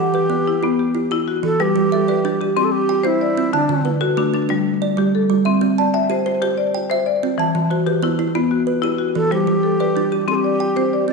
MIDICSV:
0, 0, Header, 1, 4, 480
1, 0, Start_track
1, 0, Tempo, 321716
1, 2389, Time_signature, 12, 3, 24, 8
1, 16603, End_track
2, 0, Start_track
2, 0, Title_t, "Kalimba"
2, 0, Program_c, 0, 108
2, 0, Note_on_c, 0, 52, 83
2, 0, Note_on_c, 0, 69, 64
2, 205, Note_on_c, 0, 71, 60
2, 212, Note_off_c, 0, 52, 0
2, 443, Note_on_c, 0, 59, 77
2, 698, Note_off_c, 0, 69, 0
2, 934, Note_on_c, 0, 64, 69
2, 935, Note_off_c, 0, 59, 0
2, 937, Note_off_c, 0, 71, 0
2, 1394, Note_off_c, 0, 64, 0
2, 1412, Note_on_c, 0, 64, 67
2, 1657, Note_on_c, 0, 67, 69
2, 2135, Note_on_c, 0, 52, 77
2, 2141, Note_off_c, 0, 64, 0
2, 2143, Note_off_c, 0, 67, 0
2, 2385, Note_on_c, 0, 71, 68
2, 2620, Note_on_c, 0, 55, 88
2, 2623, Note_off_c, 0, 52, 0
2, 2868, Note_off_c, 0, 71, 0
2, 2868, Note_on_c, 0, 76, 70
2, 3106, Note_off_c, 0, 55, 0
2, 3108, Note_on_c, 0, 74, 58
2, 3354, Note_on_c, 0, 62, 85
2, 3590, Note_off_c, 0, 76, 0
2, 3601, Note_on_c, 0, 67, 65
2, 3813, Note_off_c, 0, 67, 0
2, 3830, Note_off_c, 0, 74, 0
2, 3831, Note_on_c, 0, 67, 82
2, 3832, Note_off_c, 0, 62, 0
2, 4071, Note_off_c, 0, 67, 0
2, 4314, Note_on_c, 0, 79, 70
2, 4545, Note_on_c, 0, 60, 78
2, 5017, Note_off_c, 0, 60, 0
2, 5032, Note_off_c, 0, 79, 0
2, 5035, Note_on_c, 0, 60, 82
2, 5274, Note_on_c, 0, 81, 69
2, 5508, Note_on_c, 0, 50, 86
2, 5513, Note_off_c, 0, 60, 0
2, 5742, Note_on_c, 0, 71, 64
2, 5752, Note_off_c, 0, 81, 0
2, 5978, Note_on_c, 0, 69, 60
2, 5989, Note_off_c, 0, 50, 0
2, 6225, Note_on_c, 0, 57, 81
2, 6466, Note_off_c, 0, 71, 0
2, 6470, Note_on_c, 0, 62, 69
2, 6680, Note_off_c, 0, 62, 0
2, 6698, Note_on_c, 0, 62, 76
2, 6704, Note_off_c, 0, 69, 0
2, 6708, Note_off_c, 0, 57, 0
2, 6944, Note_off_c, 0, 62, 0
2, 7189, Note_on_c, 0, 74, 69
2, 7417, Note_on_c, 0, 55, 74
2, 7885, Note_off_c, 0, 55, 0
2, 7903, Note_on_c, 0, 55, 81
2, 7908, Note_off_c, 0, 74, 0
2, 8135, Note_on_c, 0, 76, 64
2, 8375, Note_on_c, 0, 60, 90
2, 8385, Note_off_c, 0, 55, 0
2, 8621, Note_off_c, 0, 76, 0
2, 8629, Note_on_c, 0, 81, 69
2, 8861, Note_off_c, 0, 60, 0
2, 8864, Note_on_c, 0, 79, 64
2, 9096, Note_on_c, 0, 67, 87
2, 9340, Note_on_c, 0, 72, 69
2, 9348, Note_off_c, 0, 81, 0
2, 9562, Note_off_c, 0, 72, 0
2, 9580, Note_on_c, 0, 72, 79
2, 9581, Note_off_c, 0, 67, 0
2, 9585, Note_off_c, 0, 79, 0
2, 10063, Note_off_c, 0, 72, 0
2, 10063, Note_on_c, 0, 79, 68
2, 10311, Note_on_c, 0, 76, 75
2, 10784, Note_off_c, 0, 79, 0
2, 10788, Note_off_c, 0, 76, 0
2, 10791, Note_on_c, 0, 60, 81
2, 11033, Note_on_c, 0, 81, 62
2, 11264, Note_on_c, 0, 52, 81
2, 11267, Note_off_c, 0, 60, 0
2, 11503, Note_on_c, 0, 72, 65
2, 11509, Note_off_c, 0, 81, 0
2, 11739, Note_on_c, 0, 71, 60
2, 11744, Note_off_c, 0, 52, 0
2, 11974, Note_on_c, 0, 59, 84
2, 12219, Note_on_c, 0, 64, 62
2, 12223, Note_off_c, 0, 72, 0
2, 12442, Note_off_c, 0, 64, 0
2, 12458, Note_off_c, 0, 59, 0
2, 12460, Note_on_c, 0, 64, 75
2, 12461, Note_off_c, 0, 71, 0
2, 12934, Note_on_c, 0, 71, 66
2, 12941, Note_off_c, 0, 64, 0
2, 13181, Note_on_c, 0, 67, 71
2, 13657, Note_off_c, 0, 71, 0
2, 13658, Note_on_c, 0, 52, 77
2, 13661, Note_off_c, 0, 67, 0
2, 13907, Note_on_c, 0, 72, 65
2, 14133, Note_on_c, 0, 55, 80
2, 14139, Note_off_c, 0, 52, 0
2, 14384, Note_off_c, 0, 72, 0
2, 14616, Note_off_c, 0, 55, 0
2, 14626, Note_on_c, 0, 74, 64
2, 14869, Note_on_c, 0, 62, 87
2, 15100, Note_on_c, 0, 67, 64
2, 15321, Note_off_c, 0, 67, 0
2, 15339, Note_on_c, 0, 67, 74
2, 15343, Note_off_c, 0, 74, 0
2, 15344, Note_off_c, 0, 62, 0
2, 15579, Note_off_c, 0, 67, 0
2, 15818, Note_on_c, 0, 79, 69
2, 16066, Note_on_c, 0, 60, 77
2, 16513, Note_off_c, 0, 60, 0
2, 16530, Note_on_c, 0, 60, 81
2, 16538, Note_off_c, 0, 79, 0
2, 16603, Note_off_c, 0, 60, 0
2, 16603, End_track
3, 0, Start_track
3, 0, Title_t, "Marimba"
3, 0, Program_c, 1, 12
3, 0, Note_on_c, 1, 78, 59
3, 220, Note_on_c, 1, 67, 70
3, 703, Note_off_c, 1, 67, 0
3, 709, Note_on_c, 1, 64, 67
3, 713, Note_off_c, 1, 78, 0
3, 947, Note_on_c, 1, 59, 78
3, 1185, Note_on_c, 1, 67, 63
3, 1428, Note_off_c, 1, 59, 0
3, 1429, Note_off_c, 1, 64, 0
3, 1665, Note_on_c, 1, 64, 80
3, 1904, Note_on_c, 1, 66, 61
3, 1907, Note_off_c, 1, 67, 0
3, 2147, Note_off_c, 1, 64, 0
3, 2389, Note_on_c, 1, 55, 87
3, 2628, Note_off_c, 1, 66, 0
3, 2870, Note_off_c, 1, 55, 0
3, 2886, Note_on_c, 1, 69, 60
3, 3116, Note_on_c, 1, 71, 78
3, 3359, Note_on_c, 1, 67, 72
3, 3573, Note_off_c, 1, 67, 0
3, 3591, Note_on_c, 1, 67, 68
3, 3594, Note_off_c, 1, 71, 0
3, 3599, Note_off_c, 1, 69, 0
3, 3827, Note_on_c, 1, 60, 85
3, 4071, Note_off_c, 1, 67, 0
3, 4309, Note_off_c, 1, 60, 0
3, 4528, Note_on_c, 1, 72, 85
3, 4794, Note_on_c, 1, 74, 66
3, 5020, Note_off_c, 1, 72, 0
3, 5269, Note_on_c, 1, 50, 89
3, 5512, Note_off_c, 1, 74, 0
3, 5750, Note_off_c, 1, 50, 0
3, 5752, Note_on_c, 1, 64, 64
3, 5980, Note_on_c, 1, 66, 82
3, 6233, Note_on_c, 1, 62, 70
3, 6463, Note_off_c, 1, 62, 0
3, 6465, Note_off_c, 1, 66, 0
3, 6471, Note_off_c, 1, 64, 0
3, 6481, Note_on_c, 1, 62, 67
3, 6717, Note_on_c, 1, 55, 88
3, 6955, Note_off_c, 1, 62, 0
3, 7193, Note_off_c, 1, 55, 0
3, 7435, Note_on_c, 1, 67, 84
3, 7681, Note_on_c, 1, 69, 69
3, 7912, Note_off_c, 1, 67, 0
3, 8144, Note_on_c, 1, 60, 85
3, 8394, Note_off_c, 1, 69, 0
3, 8626, Note_off_c, 1, 60, 0
3, 8638, Note_on_c, 1, 74, 61
3, 8859, Note_on_c, 1, 76, 75
3, 9114, Note_on_c, 1, 72, 70
3, 9324, Note_off_c, 1, 72, 0
3, 9342, Note_on_c, 1, 72, 67
3, 9343, Note_off_c, 1, 76, 0
3, 9352, Note_off_c, 1, 74, 0
3, 9575, Note_on_c, 1, 67, 88
3, 9810, Note_on_c, 1, 74, 67
3, 10060, Note_off_c, 1, 67, 0
3, 10064, Note_off_c, 1, 72, 0
3, 10290, Note_on_c, 1, 72, 86
3, 10518, Note_off_c, 1, 74, 0
3, 10536, Note_on_c, 1, 74, 72
3, 10777, Note_off_c, 1, 72, 0
3, 11008, Note_on_c, 1, 52, 91
3, 11260, Note_off_c, 1, 74, 0
3, 11495, Note_on_c, 1, 66, 67
3, 11496, Note_off_c, 1, 52, 0
3, 11735, Note_on_c, 1, 67, 84
3, 11987, Note_on_c, 1, 64, 73
3, 12199, Note_off_c, 1, 64, 0
3, 12216, Note_on_c, 1, 64, 65
3, 12219, Note_off_c, 1, 66, 0
3, 12219, Note_off_c, 1, 67, 0
3, 12460, Note_on_c, 1, 59, 86
3, 12698, Note_on_c, 1, 66, 61
3, 12939, Note_off_c, 1, 64, 0
3, 12941, Note_off_c, 1, 59, 0
3, 13159, Note_on_c, 1, 64, 82
3, 13386, Note_off_c, 1, 66, 0
3, 13404, Note_on_c, 1, 66, 64
3, 13650, Note_off_c, 1, 64, 0
3, 13893, Note_on_c, 1, 55, 89
3, 14132, Note_off_c, 1, 66, 0
3, 14372, Note_on_c, 1, 69, 61
3, 14377, Note_off_c, 1, 55, 0
3, 14622, Note_on_c, 1, 71, 76
3, 14854, Note_on_c, 1, 67, 67
3, 15081, Note_off_c, 1, 67, 0
3, 15095, Note_off_c, 1, 69, 0
3, 15099, Note_on_c, 1, 67, 66
3, 15100, Note_off_c, 1, 71, 0
3, 15332, Note_on_c, 1, 60, 85
3, 15579, Note_off_c, 1, 67, 0
3, 15580, Note_on_c, 1, 74, 62
3, 15815, Note_off_c, 1, 60, 0
3, 16058, Note_on_c, 1, 72, 78
3, 16293, Note_off_c, 1, 74, 0
3, 16311, Note_on_c, 1, 74, 65
3, 16538, Note_off_c, 1, 72, 0
3, 16603, Note_off_c, 1, 74, 0
3, 16603, End_track
4, 0, Start_track
4, 0, Title_t, "Native American-style wooden flute"
4, 0, Program_c, 2, 77
4, 0, Note_on_c, 2, 67, 99
4, 1697, Note_off_c, 2, 67, 0
4, 2153, Note_on_c, 2, 69, 94
4, 2419, Note_on_c, 2, 67, 116
4, 2441, Note_off_c, 2, 69, 0
4, 3846, Note_off_c, 2, 67, 0
4, 3857, Note_on_c, 2, 67, 93
4, 3945, Note_on_c, 2, 69, 78
4, 3967, Note_off_c, 2, 67, 0
4, 4054, Note_on_c, 2, 67, 101
4, 4076, Note_off_c, 2, 69, 0
4, 4568, Note_on_c, 2, 64, 93
4, 4590, Note_off_c, 2, 67, 0
4, 5279, Note_off_c, 2, 64, 0
4, 5306, Note_on_c, 2, 62, 81
4, 5791, Note_off_c, 2, 62, 0
4, 13664, Note_on_c, 2, 69, 85
4, 13886, Note_off_c, 2, 69, 0
4, 13928, Note_on_c, 2, 67, 99
4, 15293, Note_off_c, 2, 67, 0
4, 15368, Note_on_c, 2, 69, 90
4, 15436, Note_on_c, 2, 67, 97
4, 15451, Note_off_c, 2, 69, 0
4, 16493, Note_off_c, 2, 67, 0
4, 16553, Note_on_c, 2, 74, 120
4, 16603, Note_off_c, 2, 74, 0
4, 16603, End_track
0, 0, End_of_file